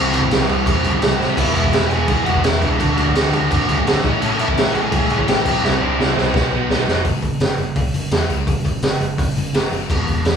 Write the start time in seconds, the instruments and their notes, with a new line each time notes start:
Already playing: picked electric bass C2, distorted electric guitar C3 E3 G3 C4 E4, overdriven electric guitar C4 C5
0.12 picked electric bass C2, distorted electric guitar C3 E3 G3 C4 E4, crash
0.22 kick
0.30 picked electric bass C2, distorted electric guitar C3 E3 G3 C4 E4, snare, crash
0.48 picked electric bass C2, distorted electric guitar C3 E3 G3 C4 E4, crash
0.66 picked electric bass E2, distorted electric guitar C3 E3 G3 C4 E4, kick, crash
0.83 picked electric bass C2, distorted electric guitar C3 E3 G3 C4 E4, crash
0.93 kick
1.00 picked electric bass C2, distorted electric guitar C3 E3 G3 C4 E4, snare, crash
1.19 picked electric bass A2, distorted electric guitar C3 E3 G3 C4 E4, overdriven electric guitar C4 C5, snare
1.37 picked electric bass E1, distorted electric guitar E2 B2 E3 G#3 B3 E4, overdriven electric guitar E4 E5, kick, crash
1.55 picked electric bass E1, distorted electric guitar E2 B2 E3 G#3 B3 E4, overdriven electric guitar E4 E5, crash
1.64 kick
1.73 picked electric bass E1, distorted electric guitar E2 B2 E3 G#3 B3 E4, snare, crash
1.90 picked electric bass E1, distorted electric guitar E2 B2 E3 G#3 B3 E4, overdriven electric guitar G#4 G#5, crash
2.08 picked electric bass A1, distorted electric guitar E2 B2 E3 G#3 B3 E4, kick, crash
2.25 picked electric bass E1, distorted electric guitar E2 B2 E3 G#3 B3 E4, overdriven electric guitar F#4 F#5, crash
2.35 kick
2.43 picked electric bass E1, distorted electric guitar E2 B2 E3 G#3 B3 E4, overdriven electric guitar E4 E5, snare, crash
2.61 picked electric bass C#2, distorted electric guitar E2 B2 E3 G#3 B3 E4, overdriven electric guitar D4 D5, crash
2.79 picked electric bass D2, distorted electric guitar D3 A3 D4 F#4, kick, crash
2.97 picked electric bass D2, distorted electric guitar D3 A3 D4 F#4, crash
3.06 kick
3.15 picked electric bass D2, distorted electric guitar D3 A3 D4 F#4, snare, crash
3.33 picked electric bass D2, distorted electric guitar D3 A3 D4 F#4, crash
3.50 picked electric bass F#2, distorted electric guitar D3 A3 D4 F#4, kick, crash
3.68 picked electric bass D2, distorted electric guitar D3 A3 D4 F#4, crash
3.78 kick
3.85 picked electric bass G#1, distorted electric guitar D3 A3 D4 F#4, snare, crash
4.04 picked electric bass A1, distorted electric guitar A2 E3 A3 C#4 E4, overdriven electric guitar D#4 D#5, kick, crash
4.21 picked electric bass A1, distorted electric guitar A2 E3 A3 C#4 E4, overdriven electric guitar C#4 C#5, crash
4.38 picked electric bass A1, distorted electric guitar A2 E3 A3 C#4 E4, overdriven electric guitar E4 E5, crash
4.48 kick
4.56 picked electric bass A1, distorted electric guitar A2 E3 A3 C#4 E4, snare, crash
4.73 picked electric bass A1, distorted electric guitar A2 E3 A3 C#4 E4, overdriven electric guitar G#4 G#5, crash
4.92 picked electric bass C#2, distorted electric guitar A2 E3 A3 C#4 E4, kick, crash
5.10 picked electric bass A1, distorted electric guitar A2 E3 A3 C#4 E4, crash
5.19 kick
5.27 picked electric bass A1, distorted electric guitar A2 E3 A3 C#4 E4, overdriven electric guitar G4 G5, snare, crash
5.45 picked electric bass C2, distorted electric guitar C3 G3 C4 E4, kick, crash
5.63 picked electric bass C2, distorted electric guitar C3 G3 C4 E4, overdriven electric guitar E4 E5, snare
5.81 picked electric bass C2, distorted electric guitar C3 G3 C4 E4, overdriven electric guitar D4 D5
5.98 picked electric bass C2, distorted electric guitar C3 G3 C4 E4, snare
6.15 picked electric bass C2, distorted electric guitar C3 G3 C4 E4, overdriven electric guitar C4 C5, snare
6.34 picked electric bass B1, distorted electric guitar B2 F#3 B3 D#4, overdriven electric guitar B3 B4, kick, snare
6.51 picked electric bass B1, distorted electric guitar B2 F#3 B3 D#4
6.69 picked electric bass B1, distorted electric guitar B2 F#3 B3 D#4, snare
6.87 picked electric bass F1, distorted electric guitar B2 F#3 B3 D#4, snare
7.04 picked electric bass F#1, distorted electric guitar F#2 C#3 F#3, kick, open hi-hat
7.22 picked electric bass F#1, distorted electric guitar F#2 C#3, kick, open hi-hat
7.40 picked electric bass F#1, distorted electric guitar F#2 C#3, snare, open hi-hat
7.58 picked electric bass F#1, distorted electric guitar F#2 C#3, open hi-hat
7.76 picked electric bass C#2, distorted electric guitar F#2 C#3, kick, open hi-hat
7.94 picked electric bass F#1, distorted electric guitar F#2 C#3, open hi-hat
8.11 picked electric bass E2, distorted electric guitar F#2 C#3 F#3, snare, open hi-hat
8.29 picked electric bass C#2, distorted electric guitar F#2 C#3 F#3, open hi-hat
8.47 picked electric bass F#1, distorted electric guitar F#2 C#3, kick, open hi-hat
8.65 picked electric bass F#1, distorted electric guitar F#2 C#3, kick, open hi-hat
8.82 picked electric bass F#1, distorted electric guitar F#2 C#3, snare, open hi-hat
9.00 picked electric bass F#1, distorted electric guitar F#2 C#3, open hi-hat
9.17 picked electric bass F#1, distorted electric guitar F#2 C#3, kick, open hi-hat
9.36 picked electric bass F#1, distorted electric guitar F#2 C#3, open hi-hat
9.53 picked electric bass F#1, distorted electric guitar F#2 C#3 F#3, snare, open hi-hat
9.71 picked electric bass F#1, distorted electric guitar F#2 C#3 F#3, open hi-hat
9.89 picked electric bass E1, distorted electric guitar E2 B2 E3, kick, crash
10.07 picked electric bass E1, distorted electric guitar E2 B2, kick, open hi-hat
10.25 picked electric bass E1, distorted electric guitar E2 B2, snare, open hi-hat